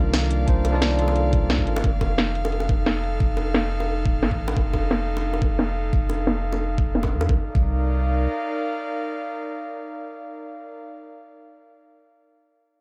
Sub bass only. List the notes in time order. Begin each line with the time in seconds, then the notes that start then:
Already playing: C2
0.48 C2
1.42 C2
1.67 G1
1.84 F1
3.20 F1
4.05 D#1
4.23 A1
4.57 F1
5.93 F1
6.87 F1
7.12 F2
7.29 C2
7.55 C2